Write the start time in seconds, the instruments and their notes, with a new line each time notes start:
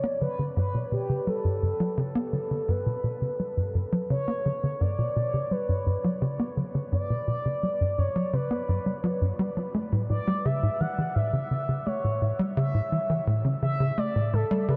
Already playing: analog synth lead C#5
0.04 analog synth bass B3
0.21 analog synth bass D3, analog synth lead B4
0.39 analog synth bass D3
0.57 analog synth bass G2, analog synth lead B4
0.74 analog synth bass B2
0.92 analog synth bass B2, analog synth lead G4
1.09 analog synth bass C#3
1.27 analog synth bass G3, analog synth lead A4
1.45 analog synth bass G2
1.62 analog synth bass G2
1.80 analog synth bass F#3
1.98 analog synth bass C#3
2.15 analog synth bass B3
2.33 analog synth bass D3
2.51 analog synth bass D3
2.68 analog synth bass G2, analog synth lead B4
2.86 analog synth bass B2
3.04 analog synth bass B2
3.22 analog synth bass C#3
3.39 analog synth bass G3
3.57 analog synth bass G2
3.75 analog synth bass G2
3.92 analog synth bass F#3
4.10 analog synth bass C#3, analog synth lead C#5
4.28 analog synth bass B3
4.46 analog synth bass D3
4.63 analog synth bass D3
4.81 analog synth bass G2, analog synth lead D5
4.98 analog synth bass B2
5.16 analog synth bass B2
5.34 analog synth bass C#3
5.51 analog synth bass G3, analog synth lead B4
5.69 analog synth bass G2
5.86 analog synth bass G2
6.04 analog synth bass F#3
6.22 analog synth bass C#3
6.39 analog synth bass B3
6.57 analog synth bass D3
6.75 analog synth bass D3
6.92 analog synth bass G2, analog synth lead D5
7.10 analog synth bass B2
7.28 analog synth bass B2
7.45 analog synth bass C#3
7.63 analog synth bass G3
7.81 analog synth bass G2
7.98 analog synth bass G2, analog synth lead C#5
8.16 analog synth bass F#3
8.33 analog synth bass C#3, analog synth lead B4
8.51 analog synth bass B3
8.69 analog synth bass G2
8.86 analog synth bass G3
9.04 analog synth bass F#3
9.21 analog synth bass G2
9.39 analog synth bass G3
9.57 analog synth bass F#3
9.74 analog synth bass A3
9.92 analog synth bass A2
10.10 analog synth bass A2, analog synth lead D5
10.27 analog synth bass G3
10.45 analog synth bass C#3, analog synth lead E5
10.63 analog synth bass A2
10.80 analog synth bass E3, analog synth lead F#5
10.98 analog synth bass E3
11.15 analog synth bass A2, analog synth lead E5
11.33 analog synth bass C#3
11.51 analog synth bass C#3
11.69 analog synth bass C#3
11.86 analog synth bass A3, analog synth lead C#5
12.04 analog synth bass A2
12.22 analog synth bass A2
12.39 analog synth bass G3
12.56 analog synth bass C#3, analog synth lead E5
12.74 analog synth bass A2
12.92 analog synth bass E3
13.10 analog synth bass E3
13.27 analog synth bass A2
13.45 analog synth bass C#3
13.62 analog synth bass C#3, analog synth lead E5
13.80 analog synth bass C#3
13.98 analog synth bass A3, analog synth lead D5
14.16 analog synth bass A2
14.33 analog synth bass A2, analog synth lead A4
14.51 analog synth bass G3
14.68 analog synth bass C#3, analog synth lead B4